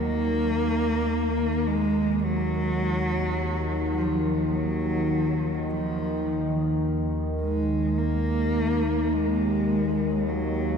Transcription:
Already playing: D#2 D#3 A#3
1.67 G#3
2.24 F#3
3.98 F3
4.55 F#3
5.71 F3
7.42 G#3
7.99 A#3
9.14 G#3
10.29 F#3

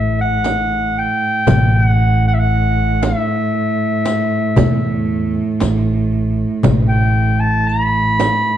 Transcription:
Already playing: A1 A2 E5
0.19 F#5, darbuka ka
0.44 riq, darbuka tek, frame drum
0.96 G5, darbuka ka
1.47 A1 A2, riq, darbuka dum, frame drum
1.75 F#5
2.28 F#5
2.34 E5
2.39 F#5
2.51 darbuka ka
3.03 E5, riq, darbuka tek, frame drum
3.55 darbuka ka
4.05 riq, darbuka tek, frame drum
4.56 E2, riq, darbuka dum, frame drum
5.35 darbuka ka
5.60 A1, riq, darbuka tek, frame drum
6.13 darbuka ka
6.63 A1, riq, darbuka dum, frame drum
6.89 G5
7.40 A5
7.67 B5, riq, darbuka ka
8.20 riq, darbuka tek, frame drum

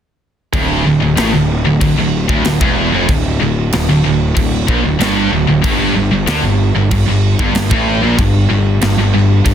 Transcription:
0.53 D1 D2, kick, crash
0.85 D1 D2
1.00 D1 D2
1.17 A1 A2, snare, crash
1.32 D1 D2
1.65 D1 D2
1.80 D1 D2, kick, crash
1.98 D1 D2
2.29 D1 D2, kick
2.45 D1 D2, snare, crash
2.61 E1 E2, kick
2.92 F1 F2
3.08 D1 D2, kick, crash
3.40 D1 D2
3.72 D1 D2, snare, crash
3.88 D1 D2
4.04 D1 D2
4.35 D1 D2, kick, crash
4.67 A#1 A#2, kick
4.83 D1 D2
4.99 G1 G2, snare, crash
5.32 D1 D2
5.47 D1 D2
5.62 G1 G2, kick, crash
5.94 G1 G2
6.11 G1 G2
6.26 D2 D3, snare, crash
6.42 G1 G2
6.74 G1 G2
6.91 G1 G2, kick, crash
7.05 G1 G2
7.39 G1 G2, kick
7.54 G1 G2, snare, crash
7.71 A1 A2, kick
8.02 A#1 A#2
8.18 G1 G2, kick, crash
8.50 G1 G2
8.81 G1 G2, snare, crash
8.97 G1 G2
9.14 G1 G2
9.45 G1 G2, kick, crash

